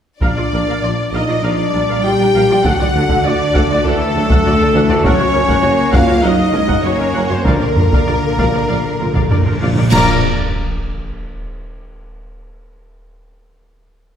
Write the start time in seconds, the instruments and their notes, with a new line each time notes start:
0.20 double bass section A#1, tuba A#1, french horn section D4, viola section A#4 F5, violin section D5, trumpet section D5, taiko
0.37 double bass section A#1, viola section F4 D5
0.52 double bass section A#1, tuba A#1, viola section D4 A#4
0.67 double bass section A#1, viola section A#4 F5
0.82 tuba A#1, double bass section A#1, viola section F4 D5
1.12 tuba A#1, double bass section A#1, french horn section D#4, viola section A#4 F5, violin section D#5, trumpet section D#5
1.28 double bass section A#1, viola section F4 D5
1.42 double bass section A#1, tuba A#1, cello section F3, french horn section D4, viola section A#4 F5, violin section D5, trumpet section D5
1.73 tuba A#1, double bass section A#1, cello section G3, viola section D4 A#4
1.89 double bass section A#1, viola section A#4 F5
2.03 double bass section A#1, tuba A#1, viola section F4 D5, french horn section G4, violin section G5, trumpet section G5
2.19 double bass section A#1, viola section D4 A#4
2.34 double bass section A#1, tuba A#1, viola section A#4 F5
2.49 double bass section A#1, viola section F4 D5
2.64 double bass section D2, tuba D2, cello section F#3, french horn section F#4, viola section A4 F#5, violin section F#5, trumpet section F#5, taiko
2.79 double bass section D2, viola section F#4 D5
2.94 tuba D2, double bass section D2, cello section D3, viola section D4 A4
3.09 double bass section D2, viola section A4 F#5, taiko
3.23 double bass section D2, tuba D2, viola section F#4 D5, violin section D5, trumpet section D5
3.27 french horn section D4
3.54 double bass section D2, tuba D2, viola section A4 F#5, taiko
3.68 double bass section D2, viola section F#4 D5
3.83 double bass section D2, tuba D2, cello section E3, french horn section A3, violin section A4, trumpet section A4, viola section A4 F#5
4.13 double bass section D2, tuba D2, cello section F#3, viola section D4 A4
4.29 double bass section D2, viola section A4 F#5, taiko
4.43 double bass section D2, tuba D2, cello section D3, viola section F#4 D5
4.58 double bass section D2, viola section D4 A4
4.73 double bass section D2, tuba D2, cello section E3, viola section A4 F#5
4.87 double bass section D2, viola section F#4 D5
5.03 double bass section F#1, tuba F#1, cello section F#3, french horn section C#4, viola section A#4 F#5, trumpet section C#5, violin section C#5, taiko
5.19 double bass section F#1, viola section F#4 C#5
5.33 double bass section F#1, tuba F#1, viola section C#4 A#4
5.48 double bass section F#1, viola section A#4 F#5, taiko
5.62 double bass section F#1, tuba F#1, cello section A#3, viola section F#4 C#5
5.92 double bass section F#1, tuba F#1, french horn section F4, viola section A#4 F#5, violin section F5, trumpet section F5, taiko
6.07 double bass section F#1, viola section F#4 C#5
6.22 tuba F#1, double bass section F#1, cello section F#3, french horn section D#4, viola section A#4 F#5, trumpet section D#5, violin section D#5
6.52 double bass section F#1, tuba F#1, cello section G#3, viola section C#4 A#4
6.68 double bass section F#1, viola section A#4 F#5, taiko
6.83 double bass section F#1, tuba F#1, cello section A#3, french horn section C#4, viola section F#4 C#5, trumpet section C#5, violin section C#5
6.97 double bass section F#1, viola section C#4 A#4
7.13 tuba F#1, double bass section F#1, viola section A#4 F#5
7.29 double bass section F#1, french horn section C4, viola section F#4 C#5, violin section C5, trumpet section C5
7.45 double bass section A#1, tuba A#1, cello section D3, french horn section A#3, violin section A#4, trumpet section A#4, viola section D5 F5, taiko, reverse cymbal
7.54 timpani A#2
7.61 double bass section A#1, timpani A#2, viola section A#4 D5
7.70 timpani A#2
7.76 tuba A#1, double bass section A#1, viola section F4 A#4, taiko low
7.85 timpani A#2
7.92 double bass section A#1, viola section D5 F5, taiko
8.07 double bass section A#1, tuba A#1, timpani A#2, viola section A#4 D5
8.31 timpani A#2
8.38 double bass section A#1, tuba A#1, timpani A#2, viola section D5 F5, taiko
8.46 timpani A#2
8.53 double bass section A#1, timpani A#2, viola section A#4 D5
8.60 timpani A#2
8.67 double bass section A#1, tuba A#1, timpani A#2, viola section D5 F5
8.76 timpani A#2
8.83 timpani A#2
8.91 timpani A#2
8.99 double bass section A#1, tuba A#1, timpani A#2, viola section F4 A#4
9.06 timpani A#2
9.13 double bass section A#1, timpani A#2, viola section D5 F5, taiko
9.21 timpani A#2
9.29 tuba A#1, double bass section A#1, timpani A#2, viola section A#4 D5, taiko low
9.36 timpani A#2
9.44 double bass section A#1, timpani A#2, viola section F4 A#4
9.52 timpani A#2
9.59 double bass section A#1, tuba A#1, timpani A#2, viola section D5 F5
9.66 timpani A#2
9.75 double bass section A#1, timpani A#2, viola section A#4 D5
9.82 timpani A#2
9.92 tuba A#1, double bass section A#1, timpani A#2, cello section A#2, french horn section A#3, trumpet section A#4, viola section A#4 D5, violin section A#5, concert bass drum, crash, sub drop